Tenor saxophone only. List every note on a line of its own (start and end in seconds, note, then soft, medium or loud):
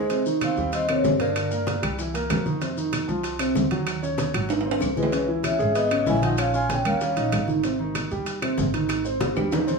0.00 0.24 G#3 medium
0.42 0.71 C4 medium
0.73 0.88 C4 medium
0.89 1.03 A#3 medium
1.04 1.14 G#3 medium
1.20 1.79 A#3 medium
4.96 5.26 G#3 medium
5.44 5.73 C#4 medium
5.75 6.04 B3 medium
6.06 6.21 E4 medium
6.23 6.37 D#4 medium
6.38 6.53 C#4 medium
6.54 6.69 F4 medium
6.71 6.85 C#4 medium
6.85 7.00 C#4 medium
7.02 7.45 C#4 medium